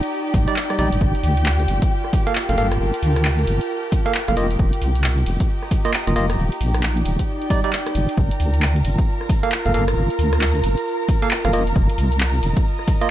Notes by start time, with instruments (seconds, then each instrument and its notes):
Already playing: analog synth pad D#4 D5, violin section G4 G5
0.03 analog synth pad G5, closed hi-hat, shaker
0.12 shaker
0.25 shaker
0.34 wobble bass A#1, kick, open hi-hat, shaker
0.48 tine electric piano G3 D#4 D5, closed hi-hat, shaker
0.55 clap, shaker
0.70 tine electric piano G3 D#4 D5, cross-stick, closed hi-hat
0.78 wobble bass A#1, tine electric piano G3 D#4 D5, open hi-hat, shaker
0.92 wobble bass G1, closed hi-hat, shaker
1.01 wobble bass G1, analog synth pad F4, kick, shaker
1.15 closed hi-hat
1.23 wobble bass D2, open hi-hat, shaker
1.37 closed hi-hat, shaker
1.46 clap, shaker
1.60 closed hi-hat, shaker
1.67 wobble bass G1, analog synth pad A#4, open hi-hat, shaker
1.82 kick, closed hi-hat, shaker
1.90 shaker
1.95 analog synth pad A5
2.04 cross-stick, shaker
2.13 kick, open hi-hat, shaker
2.27 tine electric piano A#3 A4 F5, closed hi-hat, shaker
2.35 clap, shaker
2.49 wobble bass G1, tine electric piano A#3 A4 F5, closed hi-hat
2.58 wobble bass G1, tine electric piano A#3 A4 F5, open hi-hat, shaker
2.71 cross-stick, closed hi-hat, shaker
2.80 wobble bass G1, shaker
2.94 closed hi-hat
3.03 wobble bass D2, open hi-hat, shaker
3.16 cross-stick, closed hi-hat, shaker
3.25 clap, shaker
3.39 closed hi-hat, shaker
3.47 wobble bass G1, open hi-hat, shaker
3.61 closed hi-hat, shaker
3.70 shaker
3.84 shaker
3.91 kick, open hi-hat, shaker
4.06 tine electric piano A#3 A4 F5, closed hi-hat, shaker
4.14 clap, shaker
4.28 wobble bass G1, tine electric piano A#3 A4 F5, cross-stick, closed hi-hat
4.37 wobble bass F1, tine electric piano A#3 F4 D#5, open hi-hat, shaker
4.51 closed hi-hat, shaker
4.59 wobble bass F1, kick, shaker
4.73 closed hi-hat
4.81 wobble bass C2, open hi-hat, shaker
4.95 analog synth pad D#5, closed hi-hat, shaker
5.04 clap, shaker
5.17 closed hi-hat, shaker
5.26 wobble bass F1, analog synth pad A#5, open hi-hat, shaker
5.40 kick, closed hi-hat, shaker
5.48 shaker
5.62 cross-stick, shaker
5.71 kick, open hi-hat, shaker
5.84 tine electric piano A#3 F4 D#5, closed hi-hat, shaker
5.93 clap, shaker
6.07 wobble bass F1, tine electric piano A#3 F4 D#5, closed hi-hat
6.16 wobble bass F1, tine electric piano A#3 F4 D#5, open hi-hat, shaker
6.30 cross-stick, closed hi-hat, shaker
6.38 wobble bass D#1, analog synth pad D#4, shaker
6.52 closed hi-hat, shaker
6.61 wobble bass A#1, analog synth pad D5, open hi-hat, shaker
6.74 cross-stick, closed hi-hat, shaker
6.81 analog synth pad G5, clap, shaker
6.96 closed hi-hat, shaker
7.05 wobble bass D#1, open hi-hat, shaker
7.18 kick, closed hi-hat, shaker
7.27 shaker
7.41 closed hi-hat, shaker
7.50 tine electric piano G3 D#4 D5, kick, open hi-hat, shaker
7.64 tine electric piano G3 D#4 D5, closed hi-hat, shaker
7.73 clap, shaker
7.86 cross-stick, closed hi-hat, shaker
7.95 wobble bass G1, open hi-hat, shaker
8.09 closed hi-hat, shaker
8.17 wobble bass G1, analog synth pad F4, violin section A#4 A#5, kick, shaker
8.31 closed hi-hat
8.40 wobble bass D2, open hi-hat, shaker
8.54 analog synth pad A#4, closed hi-hat, shaker
8.62 clap, shaker
8.76 closed hi-hat, shaker
8.85 wobble bass G1, open hi-hat, shaker
8.98 kick, closed hi-hat, shaker
9.07 shaker
9.20 cross-stick, shaker
9.29 kick, open hi-hat, shaker
9.43 tine electric piano A#3 A4 F5, closed hi-hat
9.52 clap, shaker
9.66 wobble bass G1, tine electric piano A#3 A4 F5, closed hi-hat
9.74 wobble bass G1, tine electric piano A#3 A4 F5, open hi-hat, shaker
9.88 cross-stick, closed hi-hat, shaker
9.97 wobble bass G1, shaker
10.10 closed hi-hat
10.19 wobble bass D2, open hi-hat, shaker
10.33 cross-stick, closed hi-hat, shaker
10.41 clap, shaker
10.55 closed hi-hat, shaker
10.63 wobble bass G1, open hi-hat, shaker
10.77 closed hi-hat, shaker
10.86 shaker
11.00 shaker
11.08 kick, open hi-hat, shaker
11.22 tine electric piano A#3 A4 F5, closed hi-hat, shaker
11.31 clap, shaker
11.45 wobble bass G1, tine electric piano A#3 A4 F5, cross-stick, closed hi-hat
11.53 wobble bass F1, tine electric piano A#3 F4 D#5, open hi-hat, shaker
11.67 closed hi-hat, shaker
11.75 wobble bass F1, kick, shaker
11.90 closed hi-hat
11.97 wobble bass C2, analog synth pad D#5, open hi-hat, shaker
12.12 closed hi-hat, shaker
12.20 clap, shaker
12.31 analog synth pad A#5, closed hi-hat, shaker
12.43 wobble bass F1, open hi-hat, shaker
12.57 kick, closed hi-hat, shaker
12.65 shaker
12.79 cross-stick, shaker
12.88 kick, open hi-hat, shaker
13.01 tine electric piano A#3 F4 D#5, closed hi-hat, shaker